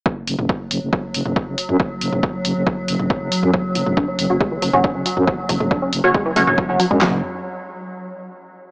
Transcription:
0.06 synth drone F#3, kick
0.27 fm bass F#1, open hi-hat
0.39 fm bass F#1, mid tom
0.49 kick
0.71 fm bass F#1, open hi-hat
0.82 fm bass F#1
0.93 kick
1.14 fm bass F#1, open hi-hat
1.26 fm bass F#1, mid tom
1.36 kick
1.47 fm bass F#1
1.58 open hi-hat
1.69 fm bass F#2, mid tom
1.80 kick
2.01 fm bass F#1, open hi-hat
2.13 fm bass F#1, mid tom
2.23 kick
2.45 fm bass F#1, open hi-hat
2.56 fm bass F#1
2.67 kick
2.88 fm bass F#1, open hi-hat
3.00 fm bass F#1, mid tom
3.10 kick
3.21 fm bass F#1
3.32 open hi-hat
3.43 fm bass F#2, mid tom
3.54 synth arpeggio sound F#3, kick
3.75 fm bass F#1, synth arpeggio sound F#3, open hi-hat
3.86 fm bass F#1, synth arpeggio sound A3, mid tom
3.97 synth arpeggio sound D4, kick
4.08 synth arpeggio sound C#4
4.19 fm bass F#1, open hi-hat
4.30 fm bass F#1, synth stab C#4 F#4 C#5, synth arpeggio sound F#4
4.41 synth arpeggio sound G#3, kick
4.52 synth arpeggio sound E3
4.62 fm bass F#1, synth arpeggio sound F#3, open hi-hat
4.73 fm bass F#1, synth stab C#4 F#4 C#5, mid tom
4.84 synth arpeggio sound D4, kick
4.95 fm bass F#1, synth arpeggio sound C#4
5.06 synth arpeggio sound F#3, open hi-hat
5.17 fm bass F#2, synth arpeggio sound F#3, mid tom
5.27 synth arpeggio sound F#3, kick
5.49 fm bass F#1, synth arpeggio sound F#3, kick, open hi-hat
5.60 fm bass F#1, synth arpeggio sound A3, mid tom
5.71 synth arpeggio sound D4, kick
5.82 synth arpeggio sound C#4
5.93 fm bass F#1, open hi-hat
6.04 fm bass F#1, synth stab C#4 F#4 C#5, synth arpeggio sound F#4
6.14 synth arpeggio sound G#3, kick
6.26 synth arpeggio sound E3
6.36 fm bass F#1, synth arpeggio sound A3, synth stab C#4 F#4 C#5, open hi-hat
6.47 fm bass F#1, synth stab C#4 F#4 C#5, mid tom
6.58 synth arpeggio sound F#3, kick
6.69 fm bass F#1, synth arpeggio sound F#3, synth stab C#4 F#4 C#5
6.80 synth arpeggio sound F#3, open hi-hat
6.91 fm bass F#2, synth arpeggio sound G#3, mid tom
7.01 fm bass F#1, synth arpeggio sound F#3, synth stab C#4 F#4 C#5, snare, clap, floor tom

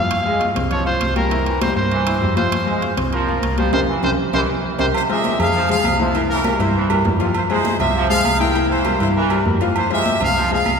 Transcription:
Already playing: fingered electric bass F2, upright piano F3 F4 F5, trumpet F5
0.11 high conga, high timbale
0.25 upright piano G#3 G#4 G#5, trombone section G#3, high conga
0.40 upright piano F4 F5 F6, high conga, high timbale
0.55 fingered electric bass C2, upright piano C4 C5 C6, high conga, low conga, high timbale
0.71 trombone section F3, trumpet C#5, high conga, low conga, high timbale
0.86 upright piano F4 F5 F6, trumpet C5, high conga
1.01 fingered electric bass C2, high conga, high timbale
1.16 trombone section F3, upright piano G3 G4 G5, trumpet A#4, high conga, high timbale
1.30 upright piano E3 E4 E5, high conga, high timbale
1.46 trombone section E3, high conga, high timbale
1.61 upright piano G3 G4 G5, trumpet C5, high conga, high timbale
1.76 fingered electric bass G2, upright piano A#3 A#4 A#5, trumpet C5, high conga
1.91 trombone section E3, high conga, high timbale
2.06 upright piano E4 E5 E6, high conga, high timbale
2.21 fingered electric bass F2, upright piano G3 G4 G5, high conga
2.36 trombone section C3, upright piano F3 F4 F5, trumpet C5, high conga, high timbale
2.52 high conga, high timbale
2.66 upright piano G#3 G#4 G#5, trombone section G#3, high conga
2.82 upright piano F4 F5 F6, high conga, high timbale
2.97 fingered electric bass C2, upright piano C4 C5 C6, high conga, low conga, high timbale
3.12 trombone section F3, trumpet A#4, high conga, high timbale
3.28 upright piano F4 F5 F6, high conga
3.42 fingered electric bass C2, high conga, high timbale
3.58 trombone section F3, upright piano G3 G4 G5, trumpet C5, high conga, high timbale
3.72 fingered electric bass C2, upright piano G4 A#4 C5, trumpet C5, low conga, high timbale
3.88 trombone section E3
4.03 fingered electric bass C2, upright piano G4 A#4 C5, trumpet C5, low conga, high timbale
4.33 fingered electric bass C2, trombone section E3, upright piano G4 A#4 C5, trumpet C5, low conga, high timbale
4.78 fingered electric bass C2, trombone section C3, upright piano G4 A#4 C5, trumpet C5, low conga, high timbale
4.94 trumpet section F4 C5, high conga, low agogo
5.09 trombone section G#3, upright piano G#3 F4 C5, trumpet section G4 E5, high conga, low agogo
5.24 high conga, low agogo
5.39 fingered electric bass F2, upright piano G#3 G#4 C5, trumpet section G#4 F5, high conga, low conga, low agogo
5.54 trombone section F3, high conga, low conga
5.69 upright piano G#3 G#4 C5, trumpet section G#4 F5, high conga
5.84 fingered electric bass C2, high conga, low agogo
5.99 upright piano E3 E4 E5, trombone section F3, high conga
6.14 upright piano E3 E4 E5, trumpet section E4 A#4, high conga, low agogo
6.29 trombone section E3, trumpet section C#4 A#4, high conga
6.44 upright piano G3 G4 A#4, high conga, low agogo
6.59 fingered electric bass G2, upright piano E3 E4 E5, trumpet section E4 C5, high conga, low agogo
6.74 trombone section E3, high conga
6.90 upright piano G3 G4 A#4, high conga, low agogo
7.04 fingered electric bass F2, high conga, low timbale
7.20 trombone section C3, upright piano F3 F4 F5, low agogo
7.35 trumpet section F4 C5, high conga, low agogo
7.49 upright piano G#3 G#4 C5, trombone section G#3, trumpet section E4 C5, high conga, low agogo
7.65 high conga, low agogo
7.79 fingered electric bass C2, upright piano G#3 F4 C5, trumpet section G4 E5, high conga, low conga, low agogo
7.94 trombone section F3, high conga
8.09 upright piano G#3 G#4 C5, trumpet section G#4 F5, high conga
8.24 fingered electric bass C2, high conga, low agogo
8.39 upright piano E3 E4 E5, trombone section F3, trumpet section A#4 G5, high conga
8.55 upright piano E3 E4 E5, high conga, low agogo
8.70 trombone section E3, trumpet section E4 C5, high conga
8.85 upright piano G3 G4 A#4, high conga, low agogo
8.99 fingered electric bass G2, upright piano E3 E4 E5, trumpet section E4 C5, high conga, low agogo
9.15 trombone section E3, trumpet section E4 A#4, high conga
9.30 upright piano G3 G4 A#4, high conga, low agogo
9.45 fingered electric bass F2, high conga
9.61 trombone section C3, upright piano F3 F4 F5, low agogo
9.76 trumpet section F4 C5, low agogo
9.90 upright piano G#3 F4 C5, trombone section G#3, trumpet section G4 E5, high conga, low agogo
10.06 high conga, low agogo
10.21 fingered electric bass C2, upright piano G#3 G#4 C5, trumpet section G#4 F5, high conga, low conga, low agogo
10.36 trombone section F3, high conga
10.51 upright piano G#3 G#4 C5, trumpet section G#4 F5, high conga
10.65 fingered electric bass C2, high conga, low agogo

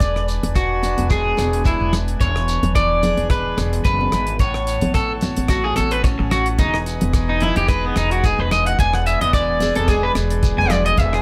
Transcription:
Already playing: steel-string acoustic guitar E3 G#3 G#4, accordion B4 G#5, clean electric guitar D5
0.00 upright bass E1, accordion D4, muted steel-string acoustic guitar stroke, kick, closed hi-hat, shekere
0.16 cross-stick
0.28 closed hi-hat, shekere
0.43 upright bass E1, closed hi-hat, high conga, low conga
0.55 clean electric guitar F#4, kick, cross-stick, closed hi-hat, shekere
0.83 steel-string acoustic guitar D4, closed hi-hat, high conga, shekere
0.98 upright bass E1, closed hi-hat, high conga
1.10 steel-string acoustic guitar G#3, clean electric guitar G#4, kick, cross-stick, closed hi-hat, shekere
1.37 upright bass E1, steel-string acoustic guitar B2, cross-stick, closed hi-hat, high conga, shekere
1.53 closed hi-hat
1.65 steel-string acoustic guitar D4, clean electric guitar E4, kick, closed hi-hat, shekere
1.81 upright bass E1
1.93 cross-stick, closed hi-hat, low conga, shekere
2.08 closed hi-hat
2.20 upright bass E1, steel-string acoustic guitar E2, clean electric guitar C#5, kick, closed hi-hat, shekere
2.36 cross-stick
2.48 closed hi-hat, shekere
2.63 upright bass E1, closed hi-hat, high conga, low conga
2.75 steel-string acoustic guitar E3, clean electric guitar D5, kick, cross-stick, closed hi-hat, shekere
3.03 steel-string acoustic guitar G#4, closed hi-hat, high conga, low conga, shekere
3.17 upright bass E1, closed hi-hat, high conga
3.30 steel-string acoustic guitar G#3, clean electric guitar B4, kick, cross-stick, closed hi-hat, shekere
3.58 upright bass E1, steel-string acoustic guitar B2, cross-stick, closed hi-hat, high conga, shekere
3.73 closed hi-hat
3.85 upright bass F#1, steel-string acoustic guitar F#2, clean electric guitar B4, kick, closed hi-hat, shekere
4.01 high conga
4.12 upright bass G#1, steel-string acoustic guitar G#2, cross-stick, closed hi-hat, low conga, shekere
4.27 closed hi-hat
4.39 upright bass A1, steel-string acoustic guitar A2, clean electric guitar C#5, accordion C#5 F#5 A5, kick, closed hi-hat, shekere
4.54 cross-stick
4.67 closed hi-hat, shekere
4.81 upright bass A1, closed hi-hat, high conga, low conga
4.94 steel-string acoustic guitar E3, clean electric guitar A4, kick, cross-stick, closed hi-hat, shekere
5.21 steel-string acoustic guitar F#4, closed hi-hat, high conga, low conga, shekere
5.37 upright bass A1, closed hi-hat, high conga
5.48 steel-string acoustic guitar A3, clean electric guitar F#4, kick, cross-stick, closed hi-hat, shekere
5.64 clean electric guitar G#4
5.76 upright bass A1, clean electric guitar A4, muted steel-string acoustic guitar stroke, cross-stick, closed hi-hat, high conga, shekere
5.91 clean electric guitar B4, closed hi-hat
6.04 steel-string acoustic guitar C#4, muted clean electric guitar stroke, kick, closed hi-hat, shekere
6.19 upright bass A1, muted clean electric guitar stroke
6.31 clean electric guitar F#4, cross-stick, closed hi-hat, low conga, shekere
6.46 closed hi-hat
6.59 upright bass E1, steel-string acoustic guitar E2, clean electric guitar D#4, accordion B4 D#5 G#5, kick, closed hi-hat, shekere
6.74 cross-stick
6.86 closed hi-hat, shekere
7.01 upright bass E1, closed hi-hat, high conga, low conga
7.13 steel-string acoustic guitar E3, kick, cross-stick, closed hi-hat, shekere
7.29 clean electric guitar D#4
7.40 steel-string acoustic guitar D#4, clean electric guitar E4, closed hi-hat, high conga, low conga
7.56 upright bass E1, clean electric guitar G4, closed hi-hat, high conga
7.68 steel-string acoustic guitar G#3, clean electric guitar B4, kick, cross-stick, closed hi-hat, shekere
7.85 clean electric guitar B3
7.96 upright bass E1, clean electric guitar D#4, muted steel-string acoustic guitar stroke, cross-stick, closed hi-hat, high conga, shekere
8.11 clean electric guitar F#4, closed hi-hat
8.24 steel-string acoustic guitar D#4, clean electric guitar G#4, kick, closed hi-hat, shekere
8.39 upright bass E1, clean electric guitar B4
8.51 clean electric guitar D#5, cross-stick, closed hi-hat, low conga, shekere
8.66 clean electric guitar F#5, closed hi-hat
8.78 upright bass E1, steel-string acoustic guitar E2, accordion D5, clean electric guitar G#5, kick, closed hi-hat, shekere
8.94 clean electric guitar F#5, cross-stick
9.06 clean electric guitar E5, closed hi-hat, shekere
9.21 upright bass E1, clean electric guitar D#5, closed hi-hat, high conga, low conga
9.33 steel-string acoustic guitar E3, clean electric guitar D5, kick, cross-stick, closed hi-hat, shekere
9.60 steel-string acoustic guitar G#4, closed hi-hat, high conga, low conga, shekere
9.75 upright bass E1, clean electric guitar A4, closed hi-hat, high conga
9.88 steel-string acoustic guitar G#3, clean electric guitar G#4, kick, cross-stick, closed hi-hat, shekere
10.03 clean electric guitar B4
10.15 upright bass E1, steel-string acoustic guitar B2, cross-stick, closed hi-hat, high conga, shekere
10.31 closed hi-hat
10.43 muted steel-string acoustic guitar stroke, kick, closed hi-hat, shekere
10.58 upright bass E1, steel-string acoustic guitar D4, clean electric guitar G#5
10.70 clean electric guitar D5, cross-stick, closed hi-hat, low conga, shekere
10.86 clean electric guitar D#5, closed hi-hat
10.97 upright bass E1, steel-string acoustic guitar E2, clean electric guitar E5, kick, closed hi-hat, shekere
11.13 clean electric guitar G#4, cross-stick

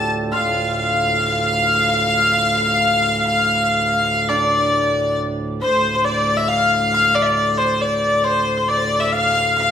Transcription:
Already playing: harmonium D2 A2, hammered dulcimer C4 D4 F4 G4 A4, hurdy-gurdy A5
0.32 harmonium D2 A2, hammered dulcimer F4, hurdy-gurdy F5, fiddle F5
4.29 hammered dulcimer D4, hurdy-gurdy D5, fiddle D5
5.61 harmonium D2 A2, fiddle C5, hurdy-gurdy C5
5.94 hurdy-gurdy C5, fiddle C5
6.04 hurdy-gurdy D5, fiddle D5
6.37 hurdy-gurdy E5, fiddle E5
6.48 hurdy-gurdy F5, fiddle F5
6.94 hurdy-gurdy F5, fiddle F5
7.15 hurdy-gurdy D5, fiddle D5
7.22 fiddle D5 E5
7.38 fiddle D5
7.57 hurdy-gurdy C5
7.62 fiddle C5
7.81 hurdy-gurdy D5, fiddle D5
8.24 hurdy-gurdy C5, fiddle C5
8.57 hurdy-gurdy C5
8.68 hurdy-gurdy D5, fiddle D5
8.77 fiddle C5
8.84 fiddle D5
9.00 hurdy-gurdy E5
9.12 hurdy-gurdy F5, fiddle F5
9.56 hurdy-gurdy F5, fiddle F5

